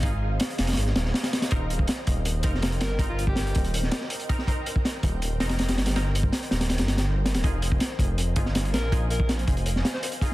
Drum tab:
HH |x-------x-x-x-xxx---x---x-x-x-x-|x---x---x---x---x---x---x-x-x---|x---x---x-x-x-x-x---x---x-x-x---|x---x---x---x---x---x-x-x-x-x-x-|
SD |--------o---o-oo--o-o-o-o-o-o-o-|--------o-------------o-o---o---|--------o---------o-o-o-------o-|--------o-----------o-o-o-o-o-o-|
BD |o-------------------------------|o-----o-----o-------o-----------|o-----o-----o---------------o---|o-----o-----o-------------------|

HH |x---x---x-x-x-x-x-x-x-x-----x-x-|x---x---x---x---x---x---x-x-x---|x---x---x-x-x-x-x---x---x-x-x---|
SD |o-------o---o-o-o-o-o-o-----o-o-|--------o-------------o-o---o---|--------o---------o-o-o---------|
BD |------o-------------------------|o-----o-----o-------o-----------|o-----o-----o---------------o---|